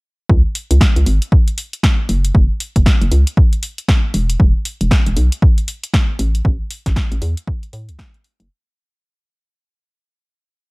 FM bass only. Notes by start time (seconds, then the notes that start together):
0.30 C#2
0.71 C#2
0.96 C#2
1.06 G#1
2.09 F#1
2.35 F#1
2.76 F#1
3.01 F#1
3.12 C#2
4.14 E1
4.40 E1
4.81 E1
5.07 E1
5.17 B1
6.19 A1
6.45 A1
6.86 A1
7.12 A1
7.22 E2
7.73 A2
7.89 C#2
8.40 F#1